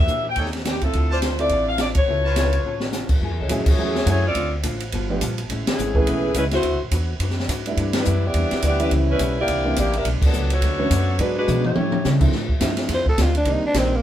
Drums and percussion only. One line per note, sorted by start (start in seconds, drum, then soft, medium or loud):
0.08 hi-hat pedal soft
0.36 kick soft
0.36 ride medium
0.46 snare soft
0.53 snare soft
0.53 ride soft
0.65 snare medium
0.65 hi-hat pedal soft
0.65 ride medium
0.81 kick soft
0.81 ride soft
0.93 kick soft
0.93 ride medium
1.22 snare medium
1.22 hi-hat pedal medium
1.22 ride medium
1.39 ride soft
1.49 kick soft
1.49 ride medium
1.78 snare medium
1.78 hi-hat pedal medium
1.78 ride medium
1.95 kick medium
1.95 ride medium
2.36 snare medium
2.36 hi-hat pedal medium
2.36 ride medium
2.53 ride soft
2.80 snare medium
2.92 snare medium
2.92 hi-hat pedal medium
3.09 kick medium
3.09 crash medium
3.21 kick soft
3.49 kick soft
3.49 hi-hat pedal medium
3.49 ride medium
3.66 kick medium
3.66 crash medium
3.95 snare medium
4.06 kick soft
4.06 hi-hat pedal soft
4.06 ride medium
4.35 kick soft
4.35 ride medium
4.63 kick soft
4.63 hi-hat pedal medium
4.63 ride medium
4.80 ride medium
4.92 kick soft
4.92 ride medium
5.21 kick soft
5.21 hi-hat pedal medium
5.21 ride medium
5.38 ride soft
5.50 kick soft
5.50 ride medium
5.67 snare medium
5.67 ride medium
5.79 hi-hat pedal medium
5.95 kick medium
6.07 kick soft
6.07 ride medium
6.34 kick soft
6.34 hi-hat pedal medium
6.34 ride medium
6.51 snare soft
6.51 ride soft
6.63 kick soft
6.63 ride medium
6.91 kick soft
6.91 hi-hat pedal medium
6.91 ride medium
7.20 kick soft
7.20 ride medium
7.30 snare soft
7.40 snare soft
7.49 kick soft
7.49 hi-hat pedal medium
7.49 ride medium
7.66 ride soft
7.77 kick soft
7.77 ride medium
7.93 snare medium
7.93 ride medium
8.05 hi-hat pedal medium
8.34 kick soft
8.34 ride medium
8.51 snare soft
8.51 ride soft
8.62 kick soft
8.62 hi-hat pedal medium
8.62 ride medium
8.80 ride soft
8.91 kick soft
8.91 ride medium
9.19 kick soft
9.19 hi-hat pedal medium
9.19 ride medium
9.48 kick soft
9.48 ride medium
9.76 kick soft
9.76 hi-hat pedal medium
9.76 ride medium
9.93 ride soft
10.05 kick soft
10.05 ride medium
10.22 kick medium
10.22 crash medium
10.33 hi-hat pedal medium
10.50 ride medium
10.62 kick soft
10.62 ride medium
10.91 kick soft
10.91 hi-hat pedal medium
10.91 ride medium
11.19 kick soft
11.19 ride medium
11.48 hi-hat pedal medium
11.48 mid tom soft
11.64 mid tom medium
11.75 mid tom medium
11.92 mid tom medium
12.05 snare medium
12.05 hi-hat pedal soft
12.21 kick medium
12.21 crash medium
12.32 snare soft
12.49 kick soft
12.61 snare medium
12.61 hi-hat pedal medium
12.61 ride medium
12.77 snare soft
12.77 ride soft
12.89 kick soft
12.89 snare soft
12.89 ride medium
13.06 kick medium
13.18 kick soft
13.18 snare medium
13.18 hi-hat pedal medium
13.18 ride medium
13.35 ride soft
13.45 kick soft
13.45 ride medium
13.74 kick soft
13.74 snare medium
13.74 hi-hat pedal medium
13.74 ride medium